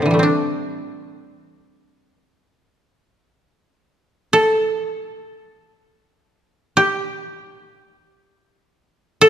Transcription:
Already playing: A2 C3 E4 G4
0.02 D3 E3
0.11 G3 A3
0.19 C4 D4
4.33 A4
6.77 G4
9.21 A4

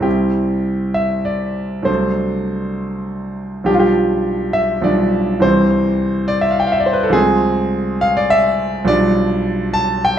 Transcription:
0.00 C2 G3 C4 E4 G4
0.94 E5
1.25 D5
1.82 C2 F#3 A3 D4 C5
3.64 B1 F3 G3 D4 G4
3.74 F4
3.80 G4
4.53 E5
4.81 B1 F3 G3 D4 D5
5.40 C2 E3 G3 C4 C5
6.28 D5
6.41 E5
6.51 F5
6.60 G5
6.67 F5
6.72 E5
6.80 D5
6.86 C5
6.93 B4
7.03 A4
7.09 C2 F3 G#3 C4 G#4
8.01 F5
8.17 D5
8.30 E5
8.85 B1 F3 G3 D4 D5
9.74 A5
10.05 G5

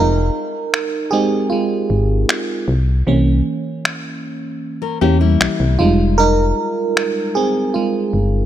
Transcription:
Already playing: F1 C4 D#4 G#4 A#4
0.74 finger snap
1.11 G#3 C4 D#4 G4 G#4
1.50 G#3 F4
1.90 G#1
2.29 finger snap
2.68 C2
3.07 C2 E3 A#3 C#4
3.85 finger snap
4.82 C#4 A#4
5.01 E2 E3 A#3 C#4 G4
5.21 G3 E4
5.41 C2, finger snap
5.60 C2
5.79 F1 G3 G#3 D#4 F4
6.18 D#4 A#4
6.97 finger snap
7.35 C4 G#4
7.74 G#3 F4
8.13 G1

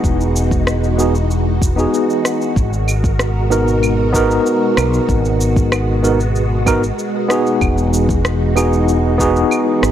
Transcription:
Already playing: E3 G#3 B3 D#4 F#4 G#4
0.04 E1, kick, shaker
0.21 shaker
0.36 shaker
0.51 kick, shaker
0.67 cross-stick, shaker
0.84 shaker
0.98 B3 D#4 F#4 G#4, shaker
1.15 shaker
1.31 shaker
1.62 kick, shaker
1.76 B3 D#4 F#4 G#4, shaker
1.94 shaker
2.10 shaker
2.25 cross-stick, shaker
2.42 shaker
2.56 G#1 B2 G#3 A#4, kick, shaker
2.73 shaker
2.88 claves, shaker
3.04 kick, shaker
3.19 cross-stick, shaker
3.50 B3 D#4 F#4 A#4, shaker
3.68 shaker
3.83 claves, shaker
4.13 B3 D#4 F#4 A#4, kick, shaker
4.31 shaker
4.46 shaker
4.77 B1, cross-stick, claves, shaker
4.94 shaker
5.09 G#1 B3, kick, shaker
5.25 shaker
5.41 shaker
5.56 kick, shaker
5.72 cross-stick, claves, shaker
6.03 B3 D#4 F#4 A#4, shaker
6.20 shaker
6.36 shaker
6.66 B3 D#4 F#4 A#4, kick, claves, shaker
6.83 shaker
6.99 shaker
7.28 B3 D#4 F#4 G#4, cross-stick, shaker
7.47 shaker
7.61 E1 E3 D#4, kick, claves, shaker
7.78 shaker
7.93 shaker
8.09 kick, shaker
8.25 cross-stick, shaker
8.56 B3 D#4 F#4 G#4, claves, shaker
8.73 shaker
8.89 shaker
9.18 B3 D#4 F#4 G#4, kick, shaker
9.36 shaker
9.51 claves, shaker
9.83 G#1, cross-stick, shaker

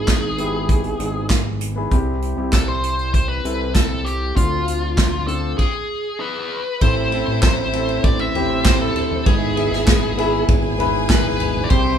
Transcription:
Already playing: G#1 G#2 B3 E4 G#4
0.08 kick, snare, clap, closed hi-hat
0.38 B3 E4 G4, closed hi-hat
0.46 G#4
0.69 kick, closed hi-hat
0.84 closed hi-hat
1.00 G#1, closed hi-hat
1.30 kick, snare, clap, closed hi-hat
1.61 closed hi-hat
1.76 B3 E4 G#4
1.91 C2 C3 C4 E4 G4, kick, closed hi-hat
2.22 closed hi-hat
2.37 C2 C4 E4 G4
2.53 C2 A4, kick, snare, clap, closed hi-hat
2.68 C5
2.84 closed hi-hat
2.99 closed hi-hat
3.14 C5, kick, closed hi-hat
3.29 B4
3.44 C2 C4 E4 A4, closed hi-hat
3.75 A4, kick, snare, clap, closed hi-hat
4.05 G4, closed hi-hat
4.35 D2 D3 C4 D4 F4, kick, closed hi-hat
4.68 closed hi-hat
4.98 kick, snare, clap, closed hi-hat
5.27 C4 D4 F4 A4, closed hi-hat
5.58 G#4, kick, crash
6.20 G#4 B4
6.81 A1 A2 C4 E4 A4 C5 E5, kick, crash
7.12 C4 E4 A4, ride
7.28 A1
7.42 A1 C5, kick, snare, clap, ride
7.73 C4 E4 A4, ride
7.89 ride
8.04 A1 C4 C5 D5, kick, ride
8.19 E5, ride
8.35 C4 E4 G4, floor tom, ride
8.65 C5, kick, snare, clap, ride
8.79 C4 E4 A4
8.96 floor tom, ride
9.11 floor tom
9.25 G#1 G#2 B3 E4 G#4 E5, kick, ride
9.56 B3 E4 G#4, ride
9.71 G#1, snare
9.87 G#1, kick, snare, clap, ride
10.18 B3 E4 G#4, ride
10.48 G#1 G#4 G#5, kick, ride
10.79 B3 E4 B4, floor tom, ride
11.10 B4, kick, snare, clap, ride
11.25 B3 E4 G#4
11.40 floor tom, ride
11.55 floor tom
11.64 D5
11.70 C2 C3 C4 E4 G4 C5 G5, kick, ride

